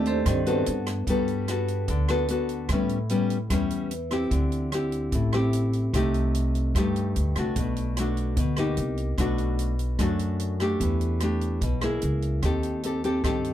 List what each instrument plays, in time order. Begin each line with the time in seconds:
Already playing: upright bass D#2, nylon-string guitar D#3 A3 C4 G4, vibraphone D4 D5
0.06 vibraphone C4 G4 A4 C5, closed hi-hat
0.26 upright bass G2, nylon-string guitar D#3, kick, cross-stick, closed hi-hat
0.46 nylon-string guitar B3 F#4 A4, closed hi-hat
0.66 upright bass G2, closed hi-hat
0.87 cross-stick, closed hi-hat
1.07 upright bass G2, nylon-string guitar G3 B3 F#4 A4, kick, closed hi-hat
1.28 closed hi-hat
1.48 nylon-string guitar B3 F#4 A4, cross-stick, closed hi-hat
1.68 closed hi-hat
1.88 upright bass D2, nylon-string guitar D3, kick, closed hi-hat
2.08 nylon-string guitar B3 F#4 A4, cross-stick, closed hi-hat
2.28 nylon-string guitar B3 F#4 A4, closed hi-hat
2.49 closed hi-hat
2.69 upright bass A2, nylon-string guitar A2 G3 B3, kick, cross-stick, closed hi-hat
2.73 nylon-string guitar C#4
2.89 closed hi-hat
3.09 nylon-string guitar G3 B3 C#4, closed hi-hat
3.30 closed hi-hat
3.50 upright bass E2, nylon-string guitar E3 G3 B3 C#4, kick, cross-stick, closed hi-hat
3.70 closed hi-hat
3.91 closed hi-hat
4.11 nylon-string guitar C4 E4 G4, cross-stick, closed hi-hat
4.31 upright bass D2, nylon-string guitar D3, kick, closed hi-hat
4.52 closed hi-hat
4.72 nylon-string guitar C4 E4 G4, cross-stick, closed hi-hat
4.92 closed hi-hat
5.12 upright bass A1, nylon-string guitar A2, kick, closed hi-hat
5.33 nylon-string guitar C4 E4 G4, cross-stick, closed hi-hat
5.53 closed hi-hat
5.73 closed hi-hat
5.93 upright bass C2, nylon-string guitar C3 A3 D#4 G4, kick, cross-stick, closed hi-hat
6.14 closed hi-hat
6.35 closed hi-hat
6.55 closed hi-hat
6.75 upright bass G2, nylon-string guitar G2 A3 D#4 G4, kick, cross-stick, closed hi-hat
6.96 closed hi-hat
7.16 upright bass D2, closed hi-hat
7.36 upright bass C2, nylon-string guitar A3 D4 F#4, cross-stick, closed hi-hat
7.56 upright bass B1, nylon-string guitar B2, kick, closed hi-hat
7.77 closed hi-hat
7.97 nylon-string guitar A3 D4 F#4, cross-stick, closed hi-hat
8.17 closed hi-hat
8.37 upright bass D2, nylon-string guitar B2, kick, closed hi-hat
8.56 nylon-string guitar A#3 D#4 G4, cross-stick, closed hi-hat
8.77 upright bass C2, closed hi-hat
8.97 closed hi-hat
9.18 upright bass B1, nylon-string guitar B2 A3 D4 F#4, kick, cross-stick, closed hi-hat
9.38 closed hi-hat
9.59 closed hi-hat
9.79 closed hi-hat
9.99 upright bass F#2, nylon-string guitar F#2 A3 D4 F#4, kick, cross-stick, closed hi-hat
10.19 closed hi-hat
10.40 closed hi-hat
10.60 nylon-string guitar A3 D4 G4, cross-stick, closed hi-hat
10.80 upright bass E2, nylon-string guitar E3, kick, closed hi-hat
11.01 closed hi-hat
11.20 nylon-string guitar A3 D4 G4, cross-stick, closed hi-hat
11.41 closed hi-hat
11.61 upright bass B1, nylon-string guitar B2, kick, closed hi-hat
11.81 nylon-string guitar A#3 E4 G#4, cross-stick, closed hi-hat
12.02 upright bass C#2, closed hi-hat
12.22 closed hi-hat
12.43 upright bass D#2, nylon-string guitar D#3 C4 G4 A4, kick, cross-stick, closed hi-hat
12.63 closed hi-hat
12.83 nylon-string guitar C4 G4 A4, closed hi-hat
13.04 nylon-string guitar C4 G4 A4, closed hi-hat
13.24 upright bass G2, nylon-string guitar D#3 C4 G4 A4, kick, cross-stick, closed hi-hat
13.45 closed hi-hat